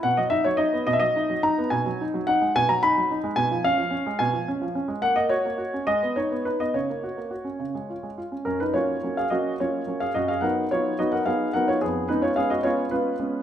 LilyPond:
<<
  \new Staff \with { instrumentName = "Grand piano" } { \time 6/8 \key b \major \tempo 4. = 72 fis''16 dis''16 e''16 cis''16 dis''8 dis''32 e''32 dis''8. ais''8 | \key fis \major gis''4 fis''8 gis''16 ais''16 b''4 | gis''8 eis''4 gis''8 r4 | fis''16 dis''16 cis''4 dis''8 cis''8 b'16 dis''16 |
cis''2~ cis''8 r8 | <cis' ais'>16 <dis' b'>16 <eis' cis''>8. <gis' eis''>16 <fis' dis''>8 <eis' cis''>8. <gis' eis''>16 | <fis' dis''>16 <gis' eis''>16 <ais' fis''>8 <eis' cis''>8 <fis' dis''>16 <ais' fis''>16 <gis' eis''>8 <ais' fis''>16 <eis' cis''>16 | <b gis'>8 <dis' b'>16 <eis' cis''>16 <gis' eis''>16 <fis' dis''>16 <eis' cis''>8 <eis' b'>4 | }
  \new Staff \with { instrumentName = "Grand piano" } { \time 6/8 \key b \major b,16 fis16 dis'16 fis16 dis'16 b16 b,16 fis16 dis'16 fis16 dis'16 b16 | \key fis \major b,16 fis16 dis'16 fis16 dis'16 gis16 b,16 fis16 dis'16 fis16 dis'16 gis16 | b,16 eis16 cis'16 eis16 cis'16 gis16 b,16 eis16 cis'16 eis16 cis'16 gis16 | ais16 ais16 fis'16 ais16 fis'16 cis'16 gis16 b16 dis'16 b16 dis'16 b16 |
cis16 ais16 fis'16 ais16 fis'16 cis'16 cis16 gis16 eis'16 gis16 eis'16 cis'16 | fis,8 <fis ais cis'>8 <fis ais cis'>8 <fis ais cis'>8 <fis ais cis'>8 <fis ais cis'>8 | fis,8 <fis b dis'>8 <fis b dis'>8 <fis b dis'>8 <fis b dis'>8 <fis b dis'>8 | eis,8 <gis b cis'>8 <gis b cis'>8 <gis b cis'>8 <gis b cis'>8 <gis b cis'>8 | }
>>